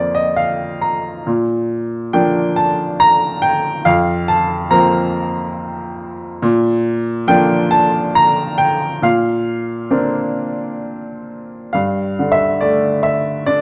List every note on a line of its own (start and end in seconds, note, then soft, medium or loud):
0.00 1.22 F2 medium
0.00 0.34 F3 soft
0.00 0.34 A#3 soft
0.00 0.34 C4 soft
0.00 0.13 D5 medium
0.00 0.35 F5 medium
0.15 0.36 D#5 medium
0.36 0.79 F5 medium
0.81 1.23 A#5 medium
1.27 3.83 A#2 medium
2.13 2.98 F3 soft
2.13 2.98 A#3 soft
2.13 2.98 D4 medium
2.13 2.59 G5 medium
2.56 3.01 A5 medium
3.00 3.44 A#5 medium
3.42 3.87 G5 medium
3.85 6.39 F2 medium
3.85 4.30 F5 medium
4.28 4.73 A5 medium
4.71 5.54 F3 soft
4.71 5.54 A#3 soft
4.71 5.55 C4 medium
4.71 5.53 A#5 medium
6.42 8.99 A#2 medium
7.27 8.12 F3 medium
7.27 8.13 A#3 medium
7.27 8.13 D4 medium
7.27 7.73 G5 loud
7.71 8.12 A5 medium
8.15 8.56 A#5 loud
8.58 9.04 G5 medium
9.02 11.70 A#2 medium
9.02 10.79 F5 medium
9.91 10.79 A#3 soft
9.91 10.79 C4 soft
9.91 10.80 D4 soft
11.73 13.61 G2 soft
11.73 12.35 F5 medium
12.19 13.61 D3 soft
12.32 12.62 E5 medium
12.61 13.61 A3 soft
12.61 13.06 D5 medium
13.03 13.48 E5 medium
13.46 13.61 D4 soft
13.46 13.61 D5 medium